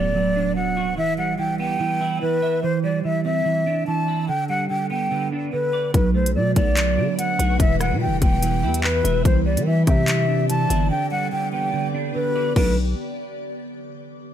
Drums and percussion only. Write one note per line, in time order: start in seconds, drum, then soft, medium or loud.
5.94 kick loud
5.94 closed hi-hat medium
6.26 closed hi-hat medium
6.56 kick loud
6.56 closed hi-hat medium
6.77 clap loud
6.77 closed hi-hat medium
7.19 closed hi-hat medium
7.40 closed hi-hat medium
7.60 kick loud
7.60 closed hi-hat medium
7.81 cross-stick loud
7.81 closed hi-hat medium
8.22 kick loud
8.22 closed hi-hat medium
8.43 closed hi-hat medium
8.74 closed hi-hat medium
8.84 clap loud
9.05 closed hi-hat medium
9.25 kick loud
9.25 closed hi-hat medium
9.57 closed hi-hat medium
9.87 kick loud
9.87 closed hi-hat medium
10.08 clap loud
10.08 closed hi-hat medium
10.50 closed hi-hat medium
10.70 closed hi-hat medium
12.56 kick loud
12.56 crash medium